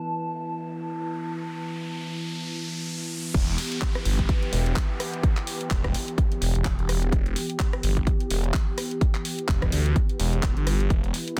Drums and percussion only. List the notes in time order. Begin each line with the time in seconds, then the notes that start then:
3.34 kick, closed hi-hat, crash
3.48 closed hi-hat
3.58 open hi-hat
3.72 closed hi-hat
3.81 kick, clap, closed hi-hat
3.95 cross-stick, closed hi-hat
4.05 open hi-hat
4.19 kick, closed hi-hat
4.29 kick, closed hi-hat
4.43 closed hi-hat
4.53 open hi-hat
4.66 closed hi-hat
4.76 kick, clap, closed hi-hat
5.00 cross-stick, open hi-hat
5.14 closed hi-hat
5.23 kick, closed hi-hat
5.37 clap, closed hi-hat
5.47 open hi-hat
5.61 closed hi-hat
5.71 kick, clap, closed hi-hat
5.84 kick, cross-stick, closed hi-hat
5.94 open hi-hat
6.08 closed hi-hat
6.18 kick, closed hi-hat
6.32 closed hi-hat
6.42 open hi-hat
6.55 closed hi-hat
6.65 kick, clap, closed hi-hat
6.79 closed hi-hat
6.89 cross-stick, open hi-hat
7.03 closed hi-hat
7.12 kick, closed hi-hat
7.26 closed hi-hat
7.36 open hi-hat
7.50 closed hi-hat
7.59 kick, clap, closed hi-hat
7.73 cross-stick, closed hi-hat
7.83 open hi-hat
7.97 kick, closed hi-hat
8.07 kick, closed hi-hat
8.20 closed hi-hat
8.30 open hi-hat
8.44 closed hi-hat
8.54 kick, clap, closed hi-hat
8.78 cross-stick, open hi-hat
8.91 closed hi-hat
9.01 kick, closed hi-hat
9.15 clap, closed hi-hat
9.25 open hi-hat
9.39 closed hi-hat
9.48 kick, clap, closed hi-hat
9.62 kick, cross-stick, closed hi-hat
9.72 open hi-hat
9.86 closed hi-hat
9.96 kick, closed hi-hat
10.09 closed hi-hat
10.20 open hi-hat
10.33 closed hi-hat
10.43 kick, clap, closed hi-hat
10.57 closed hi-hat
10.67 cross-stick, open hi-hat
10.80 closed hi-hat
10.90 kick, closed hi-hat
11.04 closed hi-hat
11.14 open hi-hat
11.28 closed hi-hat